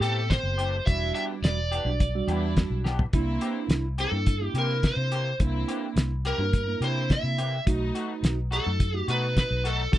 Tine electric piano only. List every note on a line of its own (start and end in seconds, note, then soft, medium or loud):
0.00 0.59 B3 medium
0.00 0.59 C4 medium
0.00 0.59 G4 medium
0.86 1.58 G3 medium
0.86 1.58 D4 medium
0.86 1.58 F#4 medium
1.86 2.06 G3 medium
1.86 2.06 D4 soft
1.86 2.06 F#4 medium
2.15 2.86 G3 medium
2.15 2.86 D4 medium
2.15 2.86 F#4 medium
3.14 3.85 A#3 medium
3.14 3.85 D4 medium
3.14 3.85 E4 loud
4.13 4.33 A#3 soft
4.13 4.33 D4 soft
4.13 4.33 E4 medium
4.42 5.12 A#3 medium
4.42 5.12 D4 medium
4.42 5.12 E4 medium
5.40 6.11 A#3 medium
5.40 6.11 D4 medium
5.40 6.11 E4 medium
6.39 6.59 A#3 medium
6.39 6.59 D4 soft
6.39 6.60 F#4 medium
6.67 7.38 A#3 medium
6.67 7.38 D4 medium
6.67 7.38 E4 medium
7.66 8.38 A3 medium
7.66 8.38 D#4 medium
7.66 8.38 F#4 medium
8.66 8.86 A3 medium
8.66 8.86 D#4 medium
8.66 8.86 F#4 medium
8.94 9.65 A3 medium
8.94 9.65 D#4 medium
8.94 9.65 F#4 medium
9.92 9.98 G3 medium
9.92 9.98 D4 medium
9.92 9.98 F#4 medium